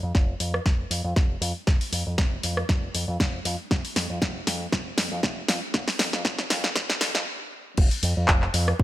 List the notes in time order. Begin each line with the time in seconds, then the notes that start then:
0.03 F2
0.15 F1, kick, snare
0.40 F2, open hi-hat
0.54 cross-stick
0.66 F1, kick, snare
0.90 F2, open hi-hat
1.04 F2
1.16 F1, kick, snare
1.41 F2, open hi-hat
1.67 F1, kick, snare
1.81 open hi-hat
1.92 F2, open hi-hat
2.07 F2
2.18 F1, kick, snare
2.43 F2, open hi-hat
2.57 cross-stick
2.69 F1, kick, snare
2.94 F2, open hi-hat
3.08 F2
3.20 F1, kick, snare
3.45 F2, open hi-hat
3.71 F1, kick, snare
3.85 open hi-hat
3.96 F2, snare, open hi-hat
4.10 F2
4.22 F1, kick, snare
4.47 F2, snare, open hi-hat
4.72 F1, kick, snare
4.98 F2, snare, open hi-hat
5.12 F2
5.23 kick, snare
5.48 F2, snare, open hi-hat
5.74 F1, kick, snare
5.88 snare, open hi-hat
5.99 F2, snare, open hi-hat
6.13 F2, snare
6.25 F1, kick, snare
6.39 snare
6.50 F2, snare, open hi-hat
6.64 snare
6.76 F1, kick, snare
6.90 snare
7.01 F2, snare, open hi-hat
7.15 F2, snare
7.77 F1, kick, crash
7.91 open hi-hat
8.03 F2, open hi-hat
8.17 F2
8.28 F1, kick, clap
8.42 clap
8.54 F2, open hi-hat
8.68 cross-stick
8.80 F1, kick